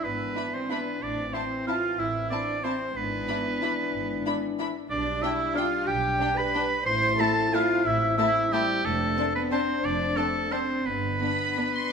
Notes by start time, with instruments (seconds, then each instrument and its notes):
Already playing: french horn section E3 D4
0.04 double bass section G#1, cello section B3, oboe B4
0.36 viola section D4, violin section E4 B5
0.54 cello section C4, oboe C5
0.70 cello section B3, viola section D4, violin section E4 B5, oboe B4
1.02 double bass section A1, french horn section E3 C4, cello section D4, oboe D5
1.33 viola section C4, cello section C4, violin section E4 A5, oboe C5
1.67 viola section C4, violin section E4 A5, cello section F4, oboe F5
1.99 double bass section A1, cello section E4, oboe E5
2.30 viola section C4, cello section D4, violin section E4 A5, oboe D5
2.64 viola section C4, cello section C4, violin section E4 A5, oboe C5
2.96 double bass section G#1, french horn section E3 D4, cello section B3, oboe B4
3.28 viola section D4, violin section E4 B5
3.62 viola section D4, violin section E4 B5
3.94 double bass section G#1
4.26 viola section D4, violin section E4 B5
4.59 viola section D4, violin section E4 B5
4.90 double bass section B1, french horn section G3 D4, cello section D4, oboe D5
5.22 violin section D4 G5, viola section D4, cello section E4, oboe E5
5.55 violin section D4 G5, viola section D4, cello section F4, oboe F5
5.87 double bass section B1, cello section G4, oboe G5
6.20 violin section D4 G5, viola section D4
6.37 cello section B4, oboe B5
6.54 viola section D4, violin section D4 G5
6.86 double bass section A1, french horn section C4 E4, cello section C5, oboe C6
7.19 viola section A3, violin section E4 A5, cello section A4, oboe A5
7.53 viola section A3, violin section E4 A5, cello section F4, oboe F5
7.85 double bass section A1, cello section E4, oboe E5
8.18 viola section A3, violin section E4 A5, cello section E4, oboe E5
8.52 cello section G3, viola section A3, violin section E4 A5, oboe G4
8.84 double bass section F1, cello section A3, french horn section C4 D4, oboe A4
9.17 viola section C4, violin section D4 A5
9.35 cello section B3, oboe B4
9.52 viola section C4, cello section C4, violin section D4 A5, oboe C5
9.84 double bass section F1, cello section D4, oboe D5
10.17 cello section A3, viola section C4, violin section D4 A5, oboe A4
10.51 viola section C4, cello section C4, violin section D4 A5, oboe C5
10.85 double bass section G1, cello section B3, french horn section B3 D4, oboe B4
11.20 viola section B3, violin section D4 B5
11.57 viola section B3, violin section D4
11.74 violin section C6